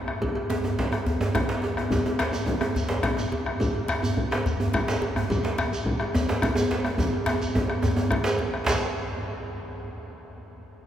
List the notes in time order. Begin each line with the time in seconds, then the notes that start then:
0.08 bombo rim
0.22 bombo low, cowbell, djembe bass
0.35 bombo rim, cowbell, djembe slap
0.50 djembe slap, djembe tone
0.64 cowbell, djembe tone
0.79 bombo low, djembe slap
0.92 bombo rim, cowbell, djembe tone
1.06 bombo rim, djembe slap, djembe tone, djembe bass
1.21 bombo rim, cowbell, djembe tone
1.35 bombo rim, bombo low, cowbell, djembe slap, djembe tone
1.49 bombo rim, djembe slap
1.62 bombo rim, cowbell, djembe slap, djembe tone
1.77 bombo rim, djembe tone
1.90 bombo low, cowbell, djembe tone, djembe bass, shekere
2.05 cowbell, djembe slap, djembe tone
2.19 bombo rim, djembe slap, djembe tone, shekere
2.33 bombo rim, cowbell, djembe tone, shekere
2.46 bombo rim, bombo low, djembe tone
2.61 bombo rim, cowbell, djembe tone
2.75 djembe slap, djembe tone, djembe bass, shekere
2.89 cowbell, djembe slap
3.03 bombo rim, bombo low, cowbell, djembe slap, djembe tone
3.17 djembe tone, shekere
3.32 cowbell, djembe tone
3.46 bombo rim
3.60 bombo low, cowbell, djembe bass, shekere
3.74 cowbell, djembe slap
3.88 bombo rim, djembe slap, djembe tone, shekere
4.02 bombo rim, cowbell, djembe bass, shekere
4.17 bombo rim, bombo low
4.31 bombo rim, cowbell, djembe slap
4.46 djembe slap, djembe tone, djembe bass, shekere
4.60 cowbell, djembe bass
4.73 bombo rim, bombo low, cowbell, djembe slap, shekere
4.88 djembe slap, shekere
5.02 cowbell, djembe tone
5.16 bombo rim, djembe bass
5.30 bombo low, cowbell, djembe bass, shekere
5.44 cowbell, djembe slap
5.58 bombo rim, djembe slap, djembe tone, shekere
5.73 bombo rim, cowbell, shekere
5.86 bombo rim, bombo low
6.00 bombo rim, cowbell
6.14 djembe slap, djembe tone, djembe bass, shekere
6.29 cowbell, djembe slap
6.42 bombo rim, bombo low, cowbell, djembe slap, djembe tone, shekere
6.55 djembe tone, shekere
6.71 cowbell, djembe slap, djembe tone
6.85 bombo rim, djembe tone
6.98 bombo low, cowbell, djembe slap, djembe tone, djembe bass, shekere
7.13 cowbell, djembe slap
7.26 bombo rim, djembe slap, djembe tone, shekere
7.41 cowbell, shekere
7.54 bombo low, djembe slap, djembe tone
7.70 bombo rim, cowbell
7.82 djembe tone, djembe bass, shekere
7.96 cowbell, djembe slap, djembe tone, shekere
8.11 bombo rim, bombo low, cowbell, djembe slap
8.24 djembe slap, shekere
8.39 bombo rim, cowbell, djembe tone
8.54 bombo rim
8.66 bombo low, cowbell, djembe slap, djembe bass, shekere